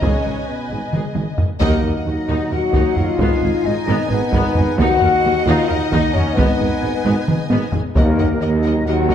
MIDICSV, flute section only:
0, 0, Header, 1, 2, 480
1, 0, Start_track
1, 0, Key_signature, -6, "minor"
1, 0, Tempo, 453858
1, 24, Time_signature, 7, 3, 24, 8
1, 9676, End_track
2, 0, Start_track
2, 0, Title_t, "Flute section"
2, 0, Program_c, 0, 73
2, 1692, Note_on_c, 0, 70, 100
2, 2146, Note_off_c, 0, 70, 0
2, 2186, Note_on_c, 0, 75, 88
2, 2650, Note_on_c, 0, 78, 91
2, 2658, Note_off_c, 0, 75, 0
2, 3124, Note_on_c, 0, 77, 105
2, 3130, Note_off_c, 0, 78, 0
2, 3844, Note_on_c, 0, 75, 103
2, 3857, Note_off_c, 0, 77, 0
2, 4311, Note_on_c, 0, 71, 104
2, 4337, Note_off_c, 0, 75, 0
2, 5047, Note_on_c, 0, 78, 127
2, 5051, Note_off_c, 0, 71, 0
2, 5764, Note_off_c, 0, 78, 0
2, 5777, Note_on_c, 0, 77, 112
2, 6022, Note_on_c, 0, 75, 117
2, 6024, Note_off_c, 0, 77, 0
2, 6487, Note_on_c, 0, 73, 101
2, 6506, Note_off_c, 0, 75, 0
2, 6738, Note_off_c, 0, 73, 0
2, 6744, Note_on_c, 0, 71, 104
2, 8186, Note_off_c, 0, 71, 0
2, 8415, Note_on_c, 0, 70, 93
2, 8867, Note_off_c, 0, 70, 0
2, 8896, Note_on_c, 0, 75, 92
2, 9381, Note_off_c, 0, 75, 0
2, 9393, Note_on_c, 0, 78, 106
2, 9676, Note_off_c, 0, 78, 0
2, 9676, End_track
0, 0, End_of_file